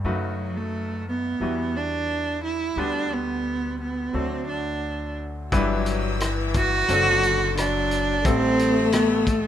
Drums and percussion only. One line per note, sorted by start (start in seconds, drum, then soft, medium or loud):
5.52 kick medium
5.52 closed hi-hat soft
5.86 closed hi-hat soft
6.20 cross-stick medium
6.20 closed hi-hat medium
6.54 kick medium
6.54 closed hi-hat soft
6.89 closed hi-hat medium
7.23 closed hi-hat soft
7.57 cross-stick medium
7.57 closed hi-hat medium
7.91 closed hi-hat soft
8.25 kick medium
8.25 closed hi-hat medium
8.59 closed hi-hat soft
8.92 cross-stick medium
8.92 closed hi-hat medium
9.27 kick medium
9.27 closed hi-hat soft